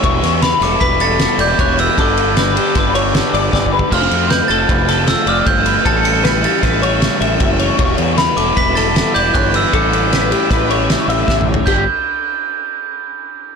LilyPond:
<<
  \new Staff \with { instrumentName = "Glockenspiel" } { \time 5/4 \key g \lydian \tempo 4 = 155 r4 b''8 d'''8 b'''8 a'''4 g'''8 fis'''8 e'''8 | d'''2 r2. | f'''4 g'''8 a'''4 r8 e'''8 f'''8 g'''4 | a'''8 cis''''4 a'''2. r8 |
r4 b''8 d'''8 b'''8 a'''4 g'''8 fis'''8 e'''8 | d'''2 r2. | g'''8 r1 r8 | }
  \new Staff \with { instrumentName = "Clean electric guitar" } { \time 5/4 \key g \lydian cis''4 b'8 a'8 b'8 a'4 d''8 cis''8 b'8 | a'4 b'8 g'8 b'8 cis''4 d''8 d''8 b'8 | c''4 b'8 a'8 b'8 a'4 d''8 c''8 b'8 | a'4 b'8 g'8 b'8 cis''4 e''8 e''8 cis''8 |
cis''4 b'8 a'8 b'8 a'4 d''8 cis''8 b'8 | a'4 b'8 g'8 b'8 cis''4 e''8 e''8 cis''8 | g'8 r1 r8 | }
  \new Staff \with { instrumentName = "Overdriven electric guitar" } { \clef bass \time 5/4 \key g \lydian <e g b e'>4. <e g b e'>4. <e g b e'>2 | <g, d g b d'>4. <g, d g b d'>4. <g, d g b d'>2 | <f a c' f'>4. <f a c' f'>4. <f a c' f'>2 | <a, e g cis' e'>4. <a, e g cis' e'>4. <a, e g cis' e'>2 |
<e g b e'>4. <e g b e'>4. <e g b e'>2 | <a, e g cis' e'>4. <a, e g cis' e'>4. <a, e g cis' e'>2 | <g, d g b d'>8 r1 r8 | }
  \new Staff \with { instrumentName = "Fingered electric bass" } { \clef bass \time 5/4 \key g \lydian e,,8 e,4 e,,8 e,,4. e,,8 e,,4 | g,,2 g,,4. g,,8 g,,4 | f,,8 f,4 f,,8 f,,4. f,,8 g,,4 | a,,2 a,,4. a,,8 fis,,4 |
e,,8 e,4 e,,8 e,,4. e,,8 g,,4 | a,,2 a,,4. a,,8 a,,4 | g,,8 r1 r8 | }
  \new DrumStaff \with { instrumentName = "Drums" } \drummode { \time 5/4 <bd cymr>8 <cymr sn>8 <cymr sn>8 <cymr sn>8 <bd cymr>8 cymr8 <cymr sn>8 cymr8 <bd cymr>8 cymr8 | <bd cymr>8 cymr8 <cymr sn>8 cymr8 <bd cymr sn>8 cymr8 <cymr sn>8 cymr8 \tuplet 3/2 { <bd sn>8 bd8 bd8 } | <cymc bd>8 cymr8 <cymr sn>8 cymr8 <bd cymr>8 <cymr sn>8 <cymr sn>8 cymr8 <bd cymr>8 cymr8 | <bd cymr>8 cymr8 <cymr sn>8 cymr8 <bd cymr sn>8 cymr8 <cymr sn>8 cymr8 <bd cymr>8 cymr8 |
<bd cymr>8 cymr8 <cymr sn>8 cymr8 <bd cymr>8 <cymr sn>8 <cymr sn>8 cymr8 <bd cymr>8 cymr8 | <bd cymr>8 cymr8 <cymr sn>8 cymr8 <bd cymr sn>8 cymr8 <cymr sn>8 cymr8 \tuplet 3/2 { <bd sn>8 toml8 tomfh8 } | <cymc bd>4 r4 r4 r4 r4 | }
>>